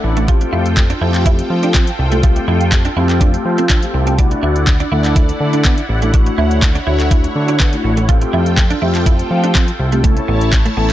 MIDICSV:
0, 0, Header, 1, 7, 480
1, 0, Start_track
1, 0, Tempo, 487805
1, 278, Time_signature, 4, 2, 24, 8
1, 10752, End_track
2, 0, Start_track
2, 0, Title_t, "Supersaw synth"
2, 0, Program_c, 0, 81
2, 0, Note_on_c, 0, 64, 79
2, 0, Note_on_c, 0, 74, 72
2, 0, Note_on_c, 0, 78, 86
2, 241, Note_off_c, 0, 64, 0
2, 241, Note_off_c, 0, 74, 0
2, 241, Note_off_c, 0, 78, 0
2, 277, Note_on_c, 0, 69, 71
2, 278, Note_on_c, 0, 65, 81
2, 4080, Note_off_c, 0, 65, 0
2, 4080, Note_off_c, 0, 69, 0
2, 4117, Note_on_c, 0, 64, 80
2, 4117, Note_on_c, 0, 74, 69
2, 4117, Note_on_c, 0, 78, 84
2, 6019, Note_off_c, 0, 74, 0
2, 6038, Note_on_c, 0, 73, 73
2, 7919, Note_off_c, 0, 64, 0
2, 7920, Note_off_c, 0, 78, 0
2, 7939, Note_off_c, 0, 73, 0
2, 7959, Note_on_c, 0, 65, 79
2, 7959, Note_on_c, 0, 69, 71
2, 7960, Note_on_c, 0, 79, 89
2, 9859, Note_off_c, 0, 65, 0
2, 9860, Note_off_c, 0, 69, 0
2, 9860, Note_off_c, 0, 79, 0
2, 9880, Note_on_c, 0, 64, 74
2, 9881, Note_on_c, 0, 73, 75
2, 9881, Note_on_c, 0, 81, 90
2, 10752, Note_off_c, 0, 64, 0
2, 10752, Note_off_c, 0, 73, 0
2, 10752, Note_off_c, 0, 81, 0
2, 10752, End_track
3, 0, Start_track
3, 0, Title_t, "Analog polysynth"
3, 0, Program_c, 1, 90
3, 0, Note_on_c, 1, 57, 83
3, 0, Note_on_c, 1, 62, 78
3, 0, Note_on_c, 1, 64, 78
3, 0, Note_on_c, 1, 69, 96
3, 189, Note_off_c, 1, 57, 0
3, 190, Note_off_c, 1, 62, 0
3, 191, Note_off_c, 1, 64, 0
3, 191, Note_off_c, 1, 69, 0
3, 276, Note_on_c, 1, 57, 88
3, 278, Note_on_c, 1, 60, 81
3, 280, Note_on_c, 1, 65, 84
3, 281, Note_on_c, 1, 67, 103
3, 813, Note_off_c, 1, 57, 0
3, 814, Note_off_c, 1, 60, 0
3, 815, Note_off_c, 1, 65, 0
3, 815, Note_off_c, 1, 67, 0
3, 996, Note_on_c, 1, 57, 88
3, 998, Note_on_c, 1, 60, 81
3, 1000, Note_on_c, 1, 65, 79
3, 1002, Note_on_c, 1, 67, 94
3, 1708, Note_off_c, 1, 57, 0
3, 1709, Note_off_c, 1, 60, 0
3, 1710, Note_off_c, 1, 65, 0
3, 1710, Note_off_c, 1, 67, 0
3, 2085, Note_on_c, 1, 57, 85
3, 2086, Note_on_c, 1, 60, 78
3, 2087, Note_on_c, 1, 65, 77
3, 2089, Note_on_c, 1, 69, 96
3, 2169, Note_off_c, 1, 57, 0
3, 2169, Note_off_c, 1, 60, 0
3, 2170, Note_off_c, 1, 65, 0
3, 2171, Note_off_c, 1, 69, 0
3, 2196, Note_on_c, 1, 57, 92
3, 2197, Note_on_c, 1, 60, 83
3, 2201, Note_on_c, 1, 67, 95
3, 2733, Note_off_c, 1, 57, 0
3, 2733, Note_off_c, 1, 60, 0
3, 2735, Note_off_c, 1, 67, 0
3, 2915, Note_on_c, 1, 57, 84
3, 2917, Note_on_c, 1, 60, 80
3, 2919, Note_on_c, 1, 65, 79
3, 2920, Note_on_c, 1, 67, 96
3, 3544, Note_off_c, 1, 57, 0
3, 3545, Note_off_c, 1, 60, 0
3, 3546, Note_off_c, 1, 65, 0
3, 3546, Note_off_c, 1, 67, 0
3, 3764, Note_on_c, 1, 57, 84
3, 3765, Note_on_c, 1, 60, 77
3, 3767, Note_on_c, 1, 65, 77
3, 3769, Note_on_c, 1, 67, 96
3, 4029, Note_off_c, 1, 57, 0
3, 4030, Note_off_c, 1, 60, 0
3, 4031, Note_off_c, 1, 65, 0
3, 4032, Note_off_c, 1, 67, 0
3, 4116, Note_on_c, 1, 57, 90
3, 4117, Note_on_c, 1, 62, 83
3, 4119, Note_on_c, 1, 64, 81
3, 4121, Note_on_c, 1, 66, 99
3, 4653, Note_off_c, 1, 57, 0
3, 4653, Note_off_c, 1, 62, 0
3, 4654, Note_off_c, 1, 64, 0
3, 4655, Note_off_c, 1, 66, 0
3, 4836, Note_on_c, 1, 57, 82
3, 4837, Note_on_c, 1, 62, 78
3, 4839, Note_on_c, 1, 64, 78
3, 4840, Note_on_c, 1, 69, 95
3, 5548, Note_off_c, 1, 57, 0
3, 5548, Note_off_c, 1, 62, 0
3, 5549, Note_off_c, 1, 64, 0
3, 5550, Note_off_c, 1, 69, 0
3, 5923, Note_on_c, 1, 57, 87
3, 5925, Note_on_c, 1, 62, 77
3, 5927, Note_on_c, 1, 64, 76
3, 5928, Note_on_c, 1, 69, 97
3, 6008, Note_off_c, 1, 57, 0
3, 6009, Note_off_c, 1, 62, 0
3, 6010, Note_off_c, 1, 64, 0
3, 6010, Note_off_c, 1, 69, 0
3, 6038, Note_on_c, 1, 57, 87
3, 6039, Note_on_c, 1, 62, 81
3, 6040, Note_on_c, 1, 64, 81
3, 6042, Note_on_c, 1, 66, 98
3, 6574, Note_off_c, 1, 57, 0
3, 6574, Note_off_c, 1, 62, 0
3, 6575, Note_off_c, 1, 64, 0
3, 6576, Note_off_c, 1, 66, 0
3, 6757, Note_on_c, 1, 57, 84
3, 6759, Note_on_c, 1, 62, 76
3, 6761, Note_on_c, 1, 64, 81
3, 6762, Note_on_c, 1, 66, 91
3, 7385, Note_off_c, 1, 57, 0
3, 7386, Note_off_c, 1, 62, 0
3, 7387, Note_off_c, 1, 64, 0
3, 7387, Note_off_c, 1, 66, 0
3, 7604, Note_on_c, 1, 57, 83
3, 7605, Note_on_c, 1, 62, 75
3, 7607, Note_on_c, 1, 64, 76
3, 7608, Note_on_c, 1, 66, 94
3, 7869, Note_off_c, 1, 57, 0
3, 7870, Note_off_c, 1, 62, 0
3, 7871, Note_off_c, 1, 64, 0
3, 7872, Note_off_c, 1, 66, 0
3, 7956, Note_on_c, 1, 57, 91
3, 7958, Note_on_c, 1, 60, 82
3, 7959, Note_on_c, 1, 65, 81
3, 7961, Note_on_c, 1, 67, 104
3, 8493, Note_off_c, 1, 57, 0
3, 8493, Note_off_c, 1, 60, 0
3, 8494, Note_off_c, 1, 65, 0
3, 8495, Note_off_c, 1, 67, 0
3, 8677, Note_on_c, 1, 57, 87
3, 8679, Note_on_c, 1, 60, 80
3, 8680, Note_on_c, 1, 65, 83
3, 8682, Note_on_c, 1, 67, 94
3, 9388, Note_off_c, 1, 57, 0
3, 9389, Note_off_c, 1, 60, 0
3, 9390, Note_off_c, 1, 65, 0
3, 9390, Note_off_c, 1, 67, 0
3, 9763, Note_on_c, 1, 57, 89
3, 9765, Note_on_c, 1, 60, 80
3, 9767, Note_on_c, 1, 65, 78
3, 9769, Note_on_c, 1, 67, 98
3, 9848, Note_off_c, 1, 57, 0
3, 9849, Note_off_c, 1, 60, 0
3, 9850, Note_off_c, 1, 65, 0
3, 9851, Note_off_c, 1, 67, 0
3, 9878, Note_on_c, 1, 57, 91
3, 9879, Note_on_c, 1, 61, 83
3, 9881, Note_on_c, 1, 64, 81
3, 9883, Note_on_c, 1, 69, 102
3, 10414, Note_off_c, 1, 57, 0
3, 10414, Note_off_c, 1, 61, 0
3, 10415, Note_off_c, 1, 64, 0
3, 10416, Note_off_c, 1, 69, 0
3, 10596, Note_on_c, 1, 57, 86
3, 10598, Note_on_c, 1, 61, 77
3, 10600, Note_on_c, 1, 64, 80
3, 10602, Note_on_c, 1, 69, 100
3, 10752, Note_off_c, 1, 57, 0
3, 10752, Note_off_c, 1, 61, 0
3, 10752, Note_off_c, 1, 64, 0
3, 10752, Note_off_c, 1, 69, 0
3, 10752, End_track
4, 0, Start_track
4, 0, Title_t, "Clean electric guitar"
4, 0, Program_c, 2, 27
4, 166, Note_on_c, 2, 57, 81
4, 246, Note_off_c, 2, 57, 0
4, 279, Note_on_c, 2, 65, 93
4, 370, Note_off_c, 2, 65, 0
4, 518, Note_on_c, 2, 64, 75
4, 609, Note_off_c, 2, 64, 0
4, 886, Note_on_c, 2, 62, 77
4, 967, Note_off_c, 2, 62, 0
4, 999, Note_on_c, 2, 64, 86
4, 1090, Note_off_c, 2, 64, 0
4, 1239, Note_on_c, 2, 64, 87
4, 1330, Note_off_c, 2, 64, 0
4, 1607, Note_on_c, 2, 62, 86
4, 1687, Note_off_c, 2, 62, 0
4, 1719, Note_on_c, 2, 60, 78
4, 1810, Note_off_c, 2, 60, 0
4, 2087, Note_on_c, 2, 57, 80
4, 2167, Note_off_c, 2, 57, 0
4, 2199, Note_on_c, 2, 65, 92
4, 2290, Note_off_c, 2, 65, 0
4, 2440, Note_on_c, 2, 64, 76
4, 2530, Note_off_c, 2, 64, 0
4, 2806, Note_on_c, 2, 62, 78
4, 2887, Note_off_c, 2, 62, 0
4, 2919, Note_on_c, 2, 64, 86
4, 3010, Note_off_c, 2, 64, 0
4, 3159, Note_on_c, 2, 62, 84
4, 3250, Note_off_c, 2, 62, 0
4, 3526, Note_on_c, 2, 60, 83
4, 3607, Note_off_c, 2, 60, 0
4, 3639, Note_on_c, 2, 62, 76
4, 3730, Note_off_c, 2, 62, 0
4, 4007, Note_on_c, 2, 60, 81
4, 4087, Note_off_c, 2, 60, 0
4, 4118, Note_on_c, 2, 62, 92
4, 4209, Note_off_c, 2, 62, 0
4, 4359, Note_on_c, 2, 64, 75
4, 4450, Note_off_c, 2, 64, 0
4, 4725, Note_on_c, 2, 62, 80
4, 4806, Note_off_c, 2, 62, 0
4, 4838, Note_on_c, 2, 64, 85
4, 4929, Note_off_c, 2, 64, 0
4, 5078, Note_on_c, 2, 64, 79
4, 5169, Note_off_c, 2, 64, 0
4, 5446, Note_on_c, 2, 62, 79
4, 5527, Note_off_c, 2, 62, 0
4, 5559, Note_on_c, 2, 59, 76
4, 5650, Note_off_c, 2, 59, 0
4, 5927, Note_on_c, 2, 57, 83
4, 6007, Note_off_c, 2, 57, 0
4, 6039, Note_on_c, 2, 62, 94
4, 6130, Note_off_c, 2, 62, 0
4, 6279, Note_on_c, 2, 64, 75
4, 6370, Note_off_c, 2, 64, 0
4, 6645, Note_on_c, 2, 62, 81
4, 6726, Note_off_c, 2, 62, 0
4, 6757, Note_on_c, 2, 64, 88
4, 6849, Note_off_c, 2, 64, 0
4, 6998, Note_on_c, 2, 64, 85
4, 7089, Note_off_c, 2, 64, 0
4, 7366, Note_on_c, 2, 62, 81
4, 7446, Note_off_c, 2, 62, 0
4, 7479, Note_on_c, 2, 59, 79
4, 7570, Note_off_c, 2, 59, 0
4, 7846, Note_on_c, 2, 57, 82
4, 7927, Note_off_c, 2, 57, 0
4, 7958, Note_on_c, 2, 65, 94
4, 8049, Note_off_c, 2, 65, 0
4, 8198, Note_on_c, 2, 64, 75
4, 8289, Note_off_c, 2, 64, 0
4, 8565, Note_on_c, 2, 62, 81
4, 8646, Note_off_c, 2, 62, 0
4, 8677, Note_on_c, 2, 64, 84
4, 8769, Note_off_c, 2, 64, 0
4, 8917, Note_on_c, 2, 64, 83
4, 9009, Note_off_c, 2, 64, 0
4, 9285, Note_on_c, 2, 62, 84
4, 9366, Note_off_c, 2, 62, 0
4, 9398, Note_on_c, 2, 60, 79
4, 9489, Note_off_c, 2, 60, 0
4, 9766, Note_on_c, 2, 57, 80
4, 9846, Note_off_c, 2, 57, 0
4, 9878, Note_on_c, 2, 57, 91
4, 9969, Note_off_c, 2, 57, 0
4, 10118, Note_on_c, 2, 59, 73
4, 10209, Note_off_c, 2, 59, 0
4, 10484, Note_on_c, 2, 57, 77
4, 10566, Note_off_c, 2, 57, 0
4, 10597, Note_on_c, 2, 59, 84
4, 10689, Note_off_c, 2, 59, 0
4, 10752, End_track
5, 0, Start_track
5, 0, Title_t, "Analog synth bass"
5, 0, Program_c, 3, 38
5, 39, Note_on_c, 3, 33, 96
5, 438, Note_off_c, 3, 33, 0
5, 518, Note_on_c, 3, 41, 104
5, 917, Note_off_c, 3, 41, 0
5, 998, Note_on_c, 3, 41, 94
5, 1397, Note_off_c, 3, 41, 0
5, 1479, Note_on_c, 3, 53, 91
5, 1877, Note_off_c, 3, 53, 0
5, 1959, Note_on_c, 3, 36, 89
5, 2357, Note_off_c, 3, 36, 0
5, 2438, Note_on_c, 3, 41, 103
5, 2837, Note_off_c, 3, 41, 0
5, 2918, Note_on_c, 3, 41, 90
5, 3317, Note_off_c, 3, 41, 0
5, 3398, Note_on_c, 3, 53, 85
5, 3797, Note_off_c, 3, 53, 0
5, 3878, Note_on_c, 3, 36, 89
5, 4277, Note_off_c, 3, 36, 0
5, 4358, Note_on_c, 3, 38, 101
5, 4757, Note_off_c, 3, 38, 0
5, 4839, Note_on_c, 3, 38, 89
5, 5238, Note_off_c, 3, 38, 0
5, 5319, Note_on_c, 3, 50, 94
5, 5718, Note_off_c, 3, 50, 0
5, 5798, Note_on_c, 3, 33, 88
5, 6197, Note_off_c, 3, 33, 0
5, 6278, Note_on_c, 3, 38, 103
5, 6677, Note_off_c, 3, 38, 0
5, 6759, Note_on_c, 3, 38, 90
5, 7157, Note_off_c, 3, 38, 0
5, 7238, Note_on_c, 3, 50, 91
5, 7637, Note_off_c, 3, 50, 0
5, 7719, Note_on_c, 3, 33, 91
5, 8118, Note_off_c, 3, 33, 0
5, 8200, Note_on_c, 3, 41, 102
5, 8598, Note_off_c, 3, 41, 0
5, 8680, Note_on_c, 3, 41, 91
5, 9078, Note_off_c, 3, 41, 0
5, 9159, Note_on_c, 3, 53, 87
5, 9557, Note_off_c, 3, 53, 0
5, 9638, Note_on_c, 3, 36, 89
5, 10037, Note_off_c, 3, 36, 0
5, 10118, Note_on_c, 3, 33, 103
5, 10517, Note_off_c, 3, 33, 0
5, 10598, Note_on_c, 3, 33, 88
5, 10752, Note_off_c, 3, 33, 0
5, 10752, End_track
6, 0, Start_track
6, 0, Title_t, "Muted clean electric guitar strokes"
6, 39, Note_on_c, 9, 29, 44
6, 137, Note_off_c, 9, 29, 0
6, 407, Note_on_c, 9, 29, 48
6, 505, Note_off_c, 9, 29, 0
6, 759, Note_on_c, 9, 29, 48
6, 857, Note_off_c, 9, 29, 0
6, 1366, Note_on_c, 9, 29, 45
6, 1464, Note_off_c, 9, 29, 0
6, 1960, Note_on_c, 9, 29, 45
6, 2058, Note_off_c, 9, 29, 0
6, 2327, Note_on_c, 9, 29, 45
6, 2426, Note_off_c, 9, 29, 0
6, 2680, Note_on_c, 9, 29, 45
6, 2779, Note_off_c, 9, 29, 0
6, 3286, Note_on_c, 9, 29, 43
6, 3384, Note_off_c, 9, 29, 0
6, 3879, Note_on_c, 9, 29, 45
6, 3977, Note_off_c, 9, 29, 0
6, 4247, Note_on_c, 9, 29, 46
6, 4345, Note_off_c, 9, 29, 0
6, 4599, Note_on_c, 9, 29, 46
6, 4698, Note_off_c, 9, 29, 0
6, 5205, Note_on_c, 9, 29, 44
6, 5303, Note_off_c, 9, 29, 0
6, 5800, Note_on_c, 9, 29, 44
6, 5898, Note_off_c, 9, 29, 0
6, 6166, Note_on_c, 9, 29, 45
6, 6265, Note_off_c, 9, 29, 0
6, 6519, Note_on_c, 9, 29, 48
6, 6617, Note_off_c, 9, 29, 0
6, 7125, Note_on_c, 9, 29, 45
6, 7224, Note_off_c, 9, 29, 0
6, 7718, Note_on_c, 9, 29, 44
6, 7817, Note_off_c, 9, 29, 0
6, 8086, Note_on_c, 9, 29, 46
6, 8184, Note_off_c, 9, 29, 0
6, 8439, Note_on_c, 9, 29, 48
6, 8537, Note_off_c, 9, 29, 0
6, 9044, Note_on_c, 9, 29, 45
6, 9143, Note_off_c, 9, 29, 0
6, 9639, Note_on_c, 9, 29, 45
6, 9737, Note_off_c, 9, 29, 0
6, 10004, Note_on_c, 9, 29, 47
6, 10103, Note_off_c, 9, 29, 0
6, 10358, Note_on_c, 9, 29, 49
6, 10456, Note_off_c, 9, 29, 0
6, 10752, End_track
7, 0, Start_track
7, 0, Title_t, "Drums"
7, 165, Note_on_c, 9, 42, 53
7, 263, Note_off_c, 9, 42, 0
7, 279, Note_on_c, 9, 36, 123
7, 279, Note_on_c, 9, 42, 75
7, 377, Note_off_c, 9, 36, 0
7, 378, Note_off_c, 9, 42, 0
7, 403, Note_on_c, 9, 42, 49
7, 502, Note_off_c, 9, 42, 0
7, 646, Note_on_c, 9, 42, 54
7, 745, Note_off_c, 9, 42, 0
7, 758, Note_on_c, 9, 36, 117
7, 761, Note_on_c, 9, 39, 114
7, 762, Note_on_c, 9, 42, 80
7, 856, Note_off_c, 9, 36, 0
7, 860, Note_off_c, 9, 39, 0
7, 860, Note_off_c, 9, 42, 0
7, 885, Note_on_c, 9, 42, 50
7, 984, Note_off_c, 9, 42, 0
7, 1126, Note_on_c, 9, 42, 54
7, 1127, Note_on_c, 9, 39, 62
7, 1224, Note_off_c, 9, 42, 0
7, 1226, Note_off_c, 9, 39, 0
7, 1237, Note_on_c, 9, 36, 108
7, 1242, Note_on_c, 9, 42, 78
7, 1335, Note_off_c, 9, 36, 0
7, 1340, Note_off_c, 9, 42, 0
7, 1366, Note_on_c, 9, 42, 51
7, 1464, Note_off_c, 9, 42, 0
7, 1603, Note_on_c, 9, 42, 58
7, 1702, Note_off_c, 9, 42, 0
7, 1718, Note_on_c, 9, 39, 112
7, 1718, Note_on_c, 9, 42, 85
7, 1719, Note_on_c, 9, 36, 121
7, 1817, Note_off_c, 9, 36, 0
7, 1817, Note_off_c, 9, 39, 0
7, 1817, Note_off_c, 9, 42, 0
7, 1844, Note_on_c, 9, 42, 50
7, 1942, Note_off_c, 9, 42, 0
7, 2083, Note_on_c, 9, 42, 57
7, 2182, Note_off_c, 9, 42, 0
7, 2197, Note_on_c, 9, 42, 72
7, 2198, Note_on_c, 9, 36, 125
7, 2296, Note_off_c, 9, 42, 0
7, 2297, Note_off_c, 9, 36, 0
7, 2323, Note_on_c, 9, 42, 47
7, 2421, Note_off_c, 9, 42, 0
7, 2565, Note_on_c, 9, 42, 53
7, 2664, Note_off_c, 9, 42, 0
7, 2677, Note_on_c, 9, 36, 115
7, 2680, Note_on_c, 9, 39, 113
7, 2680, Note_on_c, 9, 42, 81
7, 2776, Note_off_c, 9, 36, 0
7, 2778, Note_off_c, 9, 39, 0
7, 2778, Note_off_c, 9, 42, 0
7, 2804, Note_on_c, 9, 42, 48
7, 2903, Note_off_c, 9, 42, 0
7, 3045, Note_on_c, 9, 42, 55
7, 3047, Note_on_c, 9, 39, 63
7, 3144, Note_off_c, 9, 42, 0
7, 3145, Note_off_c, 9, 39, 0
7, 3157, Note_on_c, 9, 36, 109
7, 3161, Note_on_c, 9, 42, 80
7, 3255, Note_off_c, 9, 36, 0
7, 3259, Note_off_c, 9, 42, 0
7, 3286, Note_on_c, 9, 42, 50
7, 3384, Note_off_c, 9, 42, 0
7, 3523, Note_on_c, 9, 42, 58
7, 3622, Note_off_c, 9, 42, 0
7, 3638, Note_on_c, 9, 39, 112
7, 3639, Note_on_c, 9, 36, 110
7, 3639, Note_on_c, 9, 42, 89
7, 3737, Note_off_c, 9, 36, 0
7, 3737, Note_off_c, 9, 39, 0
7, 3737, Note_off_c, 9, 42, 0
7, 3764, Note_on_c, 9, 42, 50
7, 3863, Note_off_c, 9, 42, 0
7, 4004, Note_on_c, 9, 42, 53
7, 4102, Note_off_c, 9, 42, 0
7, 4118, Note_on_c, 9, 42, 76
7, 4119, Note_on_c, 9, 36, 121
7, 4216, Note_off_c, 9, 42, 0
7, 4217, Note_off_c, 9, 36, 0
7, 4242, Note_on_c, 9, 42, 46
7, 4341, Note_off_c, 9, 42, 0
7, 4485, Note_on_c, 9, 42, 54
7, 4583, Note_off_c, 9, 42, 0
7, 4597, Note_on_c, 9, 36, 110
7, 4600, Note_on_c, 9, 39, 118
7, 4600, Note_on_c, 9, 42, 78
7, 4696, Note_off_c, 9, 36, 0
7, 4699, Note_off_c, 9, 39, 0
7, 4699, Note_off_c, 9, 42, 0
7, 4725, Note_on_c, 9, 42, 49
7, 4823, Note_off_c, 9, 42, 0
7, 4965, Note_on_c, 9, 42, 54
7, 4967, Note_on_c, 9, 39, 66
7, 5064, Note_off_c, 9, 42, 0
7, 5065, Note_off_c, 9, 39, 0
7, 5077, Note_on_c, 9, 36, 111
7, 5081, Note_on_c, 9, 42, 78
7, 5175, Note_off_c, 9, 36, 0
7, 5179, Note_off_c, 9, 42, 0
7, 5206, Note_on_c, 9, 42, 50
7, 5304, Note_off_c, 9, 42, 0
7, 5443, Note_on_c, 9, 42, 59
7, 5542, Note_off_c, 9, 42, 0
7, 5559, Note_on_c, 9, 36, 114
7, 5559, Note_on_c, 9, 39, 112
7, 5559, Note_on_c, 9, 42, 90
7, 5657, Note_off_c, 9, 36, 0
7, 5657, Note_off_c, 9, 39, 0
7, 5658, Note_off_c, 9, 42, 0
7, 5685, Note_on_c, 9, 42, 53
7, 5783, Note_off_c, 9, 42, 0
7, 5924, Note_on_c, 9, 42, 54
7, 6022, Note_off_c, 9, 42, 0
7, 6039, Note_on_c, 9, 36, 120
7, 6039, Note_on_c, 9, 42, 74
7, 6137, Note_off_c, 9, 36, 0
7, 6137, Note_off_c, 9, 42, 0
7, 6164, Note_on_c, 9, 42, 49
7, 6262, Note_off_c, 9, 42, 0
7, 6406, Note_on_c, 9, 42, 53
7, 6505, Note_off_c, 9, 42, 0
7, 6518, Note_on_c, 9, 36, 119
7, 6521, Note_on_c, 9, 39, 116
7, 6522, Note_on_c, 9, 42, 81
7, 6616, Note_off_c, 9, 36, 0
7, 6620, Note_off_c, 9, 39, 0
7, 6620, Note_off_c, 9, 42, 0
7, 6646, Note_on_c, 9, 42, 48
7, 6744, Note_off_c, 9, 42, 0
7, 6886, Note_on_c, 9, 42, 54
7, 6887, Note_on_c, 9, 39, 64
7, 6984, Note_off_c, 9, 42, 0
7, 6986, Note_off_c, 9, 39, 0
7, 6997, Note_on_c, 9, 36, 108
7, 7002, Note_on_c, 9, 42, 76
7, 7096, Note_off_c, 9, 36, 0
7, 7100, Note_off_c, 9, 42, 0
7, 7126, Note_on_c, 9, 42, 51
7, 7224, Note_off_c, 9, 42, 0
7, 7363, Note_on_c, 9, 42, 58
7, 7462, Note_off_c, 9, 42, 0
7, 7479, Note_on_c, 9, 36, 110
7, 7479, Note_on_c, 9, 39, 111
7, 7479, Note_on_c, 9, 42, 88
7, 7577, Note_off_c, 9, 39, 0
7, 7577, Note_off_c, 9, 42, 0
7, 7578, Note_off_c, 9, 36, 0
7, 7604, Note_on_c, 9, 42, 51
7, 7703, Note_off_c, 9, 42, 0
7, 7844, Note_on_c, 9, 42, 54
7, 7942, Note_off_c, 9, 42, 0
7, 7958, Note_on_c, 9, 42, 76
7, 7959, Note_on_c, 9, 36, 127
7, 8057, Note_off_c, 9, 36, 0
7, 8057, Note_off_c, 9, 42, 0
7, 8083, Note_on_c, 9, 42, 49
7, 8182, Note_off_c, 9, 42, 0
7, 8327, Note_on_c, 9, 42, 53
7, 8425, Note_off_c, 9, 42, 0
7, 8438, Note_on_c, 9, 36, 113
7, 8441, Note_on_c, 9, 39, 116
7, 8441, Note_on_c, 9, 42, 81
7, 8536, Note_off_c, 9, 36, 0
7, 8539, Note_off_c, 9, 39, 0
7, 8540, Note_off_c, 9, 42, 0
7, 8565, Note_on_c, 9, 42, 49
7, 8664, Note_off_c, 9, 42, 0
7, 8807, Note_on_c, 9, 42, 54
7, 8808, Note_on_c, 9, 39, 66
7, 8905, Note_off_c, 9, 42, 0
7, 8906, Note_off_c, 9, 39, 0
7, 8918, Note_on_c, 9, 36, 105
7, 8923, Note_on_c, 9, 42, 82
7, 9016, Note_off_c, 9, 36, 0
7, 9021, Note_off_c, 9, 42, 0
7, 9047, Note_on_c, 9, 42, 51
7, 9145, Note_off_c, 9, 42, 0
7, 9285, Note_on_c, 9, 42, 56
7, 9384, Note_off_c, 9, 42, 0
7, 9400, Note_on_c, 9, 36, 114
7, 9400, Note_on_c, 9, 39, 116
7, 9400, Note_on_c, 9, 42, 85
7, 9498, Note_off_c, 9, 36, 0
7, 9498, Note_off_c, 9, 39, 0
7, 9498, Note_off_c, 9, 42, 0
7, 9526, Note_on_c, 9, 42, 51
7, 9625, Note_off_c, 9, 42, 0
7, 9764, Note_on_c, 9, 42, 55
7, 9863, Note_off_c, 9, 42, 0
7, 9879, Note_on_c, 9, 36, 124
7, 9880, Note_on_c, 9, 42, 75
7, 9978, Note_off_c, 9, 36, 0
7, 9978, Note_off_c, 9, 42, 0
7, 10004, Note_on_c, 9, 42, 46
7, 10102, Note_off_c, 9, 42, 0
7, 10247, Note_on_c, 9, 42, 53
7, 10345, Note_off_c, 9, 42, 0
7, 10358, Note_on_c, 9, 36, 114
7, 10361, Note_on_c, 9, 39, 118
7, 10362, Note_on_c, 9, 42, 81
7, 10456, Note_off_c, 9, 36, 0
7, 10460, Note_off_c, 9, 39, 0
7, 10460, Note_off_c, 9, 42, 0
7, 10486, Note_on_c, 9, 42, 49
7, 10584, Note_off_c, 9, 42, 0
7, 10752, End_track
0, 0, End_of_file